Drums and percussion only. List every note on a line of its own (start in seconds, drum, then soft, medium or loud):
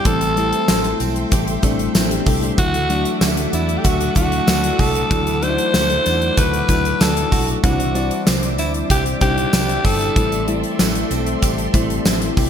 0.05 kick loud
0.05 closed hi-hat medium
0.21 closed hi-hat medium
0.37 closed hi-hat medium
0.37 tambourine soft
0.53 closed hi-hat medium
0.68 snare loud
0.68 tambourine medium
0.84 closed hi-hat medium
1.00 closed hi-hat medium
1.00 tambourine soft
1.16 closed hi-hat soft
1.32 kick loud
1.32 closed hi-hat medium
1.32 tambourine soft
1.47 closed hi-hat soft
1.63 kick medium
1.63 closed hi-hat medium
1.63 tambourine soft
1.79 closed hi-hat soft
1.95 snare loud
1.95 tambourine medium
2.11 closed hi-hat medium
2.26 kick medium
2.26 open hi-hat medium
2.26 tambourine soft
2.42 closed hi-hat soft
2.58 kick loud
2.58 closed hi-hat medium
2.58 tambourine soft
2.74 closed hi-hat medium
2.90 closed hi-hat medium
2.90 tambourine soft
3.05 closed hi-hat medium
3.21 snare loud
3.21 tambourine medium
3.37 closed hi-hat medium
3.53 closed hi-hat medium
3.53 tambourine medium
3.69 closed hi-hat soft
3.84 kick medium
3.84 closed hi-hat medium
3.84 tambourine soft
4.01 closed hi-hat soft
4.15 kick medium
4.15 closed hi-hat medium
4.15 tambourine soft
4.32 closed hi-hat soft
4.47 snare loud
4.47 tambourine medium
4.64 closed hi-hat medium
4.79 kick medium
4.79 open hi-hat medium
4.79 tambourine soft
4.95 closed hi-hat soft
5.11 kick loud
5.11 closed hi-hat medium
5.11 tambourine soft
5.27 closed hi-hat medium
5.42 closed hi-hat medium
5.42 tambourine soft
5.58 closed hi-hat medium
5.74 snare loud
5.74 tambourine medium
5.90 closed hi-hat medium
6.06 closed hi-hat medium
6.06 tambourine medium
6.22 closed hi-hat soft
6.37 kick loud
6.37 closed hi-hat medium
6.37 tambourine soft
6.53 closed hi-hat soft
6.68 kick medium
6.68 closed hi-hat medium
6.68 tambourine soft
6.85 closed hi-hat soft
7.01 snare loud
7.01 tambourine medium
7.17 closed hi-hat medium
7.32 kick medium
7.32 open hi-hat medium
7.32 tambourine soft
7.48 closed hi-hat soft
7.64 kick loud
7.64 closed hi-hat medium
7.64 tambourine soft
7.80 closed hi-hat medium
7.95 closed hi-hat medium
7.95 tambourine soft
8.11 closed hi-hat medium
8.27 snare loud
8.27 tambourine medium
8.43 closed hi-hat medium
8.58 closed hi-hat medium
8.58 tambourine medium
8.74 closed hi-hat soft
8.90 kick medium
8.90 closed hi-hat medium
8.90 tambourine soft
9.06 closed hi-hat soft
9.21 kick medium
9.21 closed hi-hat medium
9.21 tambourine soft
9.38 closed hi-hat medium
9.53 snare loud
9.53 tambourine medium
9.69 closed hi-hat medium
9.85 kick medium
9.85 open hi-hat medium
9.85 tambourine soft
10.01 closed hi-hat soft
10.16 kick loud
10.16 closed hi-hat medium
10.16 tambourine soft
10.32 closed hi-hat medium
10.48 closed hi-hat medium
10.64 closed hi-hat medium
10.79 snare loud
10.79 tambourine medium
10.95 closed hi-hat medium
11.11 closed hi-hat medium
11.11 tambourine medium
11.26 closed hi-hat soft
11.42 kick medium
11.42 closed hi-hat medium
11.42 tambourine medium
11.58 closed hi-hat soft
11.74 kick medium
11.74 closed hi-hat medium
11.74 tambourine soft
11.90 closed hi-hat soft
12.05 snare loud
12.05 tambourine medium
12.22 closed hi-hat medium
12.37 kick medium
12.37 open hi-hat medium
12.37 tambourine soft